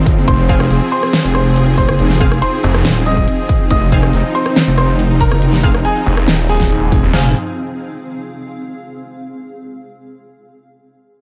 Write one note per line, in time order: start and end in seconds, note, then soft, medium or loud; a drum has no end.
0.00 0.26 G#1 medium
0.00 7.09 F3 medium
0.00 7.09 C4 medium
0.00 7.12 C4 medium
0.00 0.26 D#4 medium
0.00 0.54 G#4 medium
0.06 kick loud
0.06 open hi-hat medium
0.28 0.69 F1 medium
0.28 3.69 G#4 medium
0.28 0.84 C5 medium
0.28 0.84 C6 loud
0.28 kick loud
0.28 closed hi-hat medium
0.49 0.56 C4 medium
0.49 7.16 D#4 medium
0.49 0.56 G#4 medium
0.49 0.56 F5 medium
0.49 kick loud
0.49 closed hi-hat soft
0.60 cross-stick medium
0.71 0.80 F1 loud
0.71 closed hi-hat medium
0.92 1.23 C5 medium
0.92 1.23 C6 medium
0.92 closed hi-hat soft
1.03 cross-stick medium
1.13 snare loud
1.13 closed hi-hat medium
1.24 1.87 F1 loud
1.35 1.66 C5 medium
1.35 1.66 C6 medium
1.35 cross-stick medium
1.35 closed hi-hat soft
1.56 closed hi-hat medium
1.78 2.34 C5 medium
1.78 2.34 C6 medium
1.78 kick medium
1.78 open hi-hat medium
1.89 1.97 F#1 medium
1.89 cross-stick medium
1.99 2.40 F1 loud
1.99 closed hi-hat medium
2.10 snare soft
2.21 2.27 C4 medium
2.21 2.27 G#4 medium
2.21 2.27 F5 medium
2.21 kick loud
2.21 closed hi-hat medium
2.32 cross-stick medium
2.42 2.98 C5 medium
2.42 2.98 C6 loud
2.42 closed hi-hat medium
2.63 2.83 F1 loud
2.63 closed hi-hat soft
2.74 cross-stick medium
2.85 3.26 D#1 loud
2.85 snare loud
2.85 closed hi-hat medium
3.06 3.62 D#5 medium
3.06 3.62 D#6 loud
3.06 closed hi-hat soft
3.17 kick medium
3.28 closed hi-hat medium
3.49 kick loud
3.49 open hi-hat medium
3.71 4.12 F1 loud
3.71 7.12 D#4 medium
3.71 4.27 D#5 medium
3.71 4.27 D#6 loud
3.71 kick loud
3.71 closed hi-hat medium
3.92 3.99 C4 medium
3.92 3.99 G#4 medium
3.92 3.99 F5 medium
3.92 kick loud
3.92 closed hi-hat medium
4.03 cross-stick medium
4.13 4.23 F1 loud
4.13 closed hi-hat medium
4.35 4.66 C5 medium
4.35 4.66 C6 medium
4.35 closed hi-hat medium
4.46 cross-stick medium
4.56 snare loud
4.56 closed hi-hat medium
4.67 5.30 F1 loud
4.78 5.09 C5 medium
4.78 5.09 C6 medium
4.78 cross-stick medium
4.78 closed hi-hat medium
4.99 closed hi-hat medium
5.21 5.76 A#4 medium
5.21 5.76 A#5 loud
5.21 kick medium
5.21 open hi-hat loud
5.32 5.40 F#1 medium
5.32 cross-stick medium
5.42 5.83 F1 loud
5.42 closed hi-hat medium
5.53 snare soft
5.63 5.70 C4 medium
5.63 5.70 G#4 medium
5.63 5.70 F5 medium
5.63 kick loud
5.63 closed hi-hat medium
5.74 cross-stick medium
5.85 6.41 G#4 medium
5.85 6.41 G#5 loud
5.85 closed hi-hat medium
6.06 6.26 F1 loud
6.06 closed hi-hat medium
6.17 cross-stick medium
6.28 6.90 D#1 loud
6.28 snare loud
6.28 closed hi-hat medium
6.49 7.05 G#4 medium
6.49 7.05 G#5 loud
6.49 closed hi-hat medium
6.60 kick medium
6.60 snare soft
6.71 closed hi-hat medium
6.92 7.01 F1 medium
6.92 kick loud
6.92 open hi-hat loud
7.03 7.12 D#1 medium
7.13 7.33 F1 loud
7.13 7.33 F3 medium
7.13 7.29 C4 medium
7.13 8.81 C4 medium
7.13 7.33 C4 medium
7.13 7.29 G#4 medium
7.13 7.33 G#4 medium
7.13 7.29 F5 loud
7.13 7.29 G#5 medium
7.13 snare loud
7.13 floor tom loud
7.13 open hi-hat medium